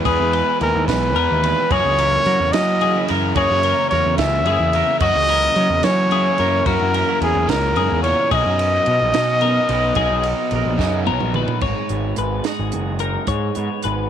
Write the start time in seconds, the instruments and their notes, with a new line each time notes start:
Already playing: clean electric guitar E3
0.04 clean electric guitar E2 G#4, picked electric bass E2, overdriven electric guitar E3 G#3 B3 E4, trumpet B4, kick, ride
0.20 picked electric bass E2
0.33 clean electric guitar G#4 B4, ride
0.61 picked electric bass D#2, clean electric guitar E3 G#4, trumpet A#4, ride
0.75 picked electric bass D#2
0.88 picked electric bass B1, overdriven electric guitar E3 G#3 B3 E4, trumpet B4, kick, snare, ride
1.16 picked electric bass E2, overdriven electric guitar E3 G#3 B3 E4, clean electric guitar A#4, ride
1.31 picked electric bass D#2
1.43 clean electric guitar E2 B4, overdriven electric guitar G#3 B3 E4, ride
1.71 picked electric bass F#2, clean electric guitar F#2 G#4 A#4, overdriven electric guitar F#2 C#3 E3 A#3 E4, trumpet C#5, kick, ride
1.84 picked electric bass C#2
1.99 clean electric guitar E4 A#4, ride
2.26 clean electric guitar F#3 A#4, picked electric bass F#3, ride
2.40 picked electric bass E2
2.52 overdriven electric guitar F#2 C#3 E3 A#3 E4, picked electric bass F#3, clean electric guitar C#4, trumpet D#5, snare, ride
2.80 overdriven electric guitar C#3 E3 A#3 E4, clean electric guitar C#3 C#4 G#4, ride
2.96 clean electric guitar E4
3.08 picked electric bass F#2, overdriven electric guitar E3 A#3 E4, clean electric guitar A#4, ride
3.35 overdriven electric guitar F#2 C#3 E3 A#3 E4, picked electric bass F#2, clean electric guitar F#2 G#4 A#4, trumpet C#5, kick, ride
3.51 picked electric bass F#2
3.63 clean electric guitar E4 A#4, ride
3.89 picked electric bass E2, clean electric guitar F#3 A#4, trumpet C#5, ride
4.06 picked electric bass E2
4.17 picked electric bass C#2, overdriven electric guitar F#2 C#3 E3 A#3 E4, clean electric guitar C#4, trumpet E5, kick, snare, ride
4.46 picked electric bass F#2, overdriven electric guitar C#3 E3 A#3 E4, clean electric guitar C#3 E4 G#4, ride
4.60 picked electric bass E2
4.73 overdriven electric guitar E3 A#3 E4, clean electric guitar A#4, ride
5.00 picked electric bass F#2, overdriven electric guitar F#2 C#3 E3 A#3 E4, clean electric guitar F#2 F#4 A#4, trumpet D#5, kick, crash
5.15 picked electric bass C#2
5.28 clean electric guitar E4 A#4, ride
5.56 picked electric bass F#3, clean electric guitar F#3 A#4, ride
5.69 picked electric bass E2
5.83 overdriven electric guitar F#2 C#3 E3 A#3 E4, picked electric bass F#3, clean electric guitar C#4, trumpet C#5, snare, ride
6.11 overdriven electric guitar C#3 E3 A#3 E4, clean electric guitar C#3 E4 G#4, ride
6.38 picked electric bass F#2, overdriven electric guitar E3 A#3 E4, clean electric guitar A#4, ride
6.66 picked electric bass F#2, overdriven electric guitar F#2 C#3 E3 A#3 E4, clean electric guitar F#2 E4 F#4, trumpet A#4, kick, ride
6.81 picked electric bass F#2
6.94 clean electric guitar C#4 A#4, ride
7.09 clean electric guitar E4
7.21 picked electric bass E2, clean electric guitar F#3 E4, trumpet G#4, ride
7.35 picked electric bass E2
7.47 picked electric bass C#2, overdriven electric guitar F#2 C#3 E3 A#3 E4, clean electric guitar F#2, trumpet A#4, kick, snare, ride
7.76 picked electric bass F#2, clean electric guitar G#2 G#4, overdriven electric guitar C#3 E3 A#3 E4, ride
7.91 picked electric bass E2
8.03 clean electric guitar A#2 A#4, overdriven electric guitar E3 A#3 E4, trumpet C#5, ride
8.31 picked electric bass B1, overdriven electric guitar B2 F#3 B3 D#4, clean electric guitar B2 G#4 A#4, trumpet D#5, kick, ride
8.45 picked electric bass F#2
8.59 clean electric guitar C#4, ride
8.77 clean electric guitar D#4
8.86 picked electric bass B2, ride
8.90 clean electric guitar F#3 A#4
9.01 picked electric bass A#1
9.14 picked electric bass B2, overdriven electric guitar B2 F#3 B3 D#4, snare, ride
9.20 clean electric guitar C#4
9.41 overdriven electric guitar B2 F#3 B3 D#4, clean electric guitar A#4, ride
9.46 clean electric guitar F#2 D#4
9.69 picked electric bass B1, overdriven electric guitar F#3 B3 D#4, clean electric guitar B4, ride
9.73 clean electric guitar A#4
9.95 picked electric bass B1, overdriven electric guitar B2 F#3 B3 D#4, clean electric guitar G#4, kick, ride
10.00 clean electric guitar B2 A#4
10.11 picked electric bass B1
10.23 ride
10.29 clean electric guitar D#4
10.51 picked electric bass A#1, ride
10.55 clean electric guitar F#3 A#4
10.66 picked electric bass A#1
10.78 picked electric bass F#2, overdriven electric guitar B2 F#3 B3 D#4, clean electric guitar C#3, kick, snare
11.06 picked electric bass B1, overdriven electric guitar B2 F#3 B3 D#4, clean electric guitar B2 A#4, high tom
11.20 picked electric bass A#1, mid tom
11.34 clean electric guitar A#2 B4, overdriven electric guitar F#3 B3 D#4, mid tom
11.48 floor tom
11.61 picked electric bass G#1, clean electric guitar G#2 C#5, kick, crash
11.89 picked electric bass G#1, clean electric guitar B3, closed hi-hat
12.16 picked electric bass G#1, clean electric guitar G#3 B4, closed hi-hat
12.44 clean electric guitar F#4 G#4, snare, closed hi-hat
12.59 picked electric bass G#1
12.72 picked electric bass F#1, clean electric guitar D#3, closed hi-hat
12.99 clean electric guitar D#4 A#4, closed hi-hat
13.27 picked electric bass G#2, clean electric guitar G#2 C#5, kick, closed hi-hat
13.55 picked electric bass G#2, clean electric guitar B3, closed hi-hat
13.82 picked electric bass G#1, clean electric guitar G#3 B4, closed hi-hat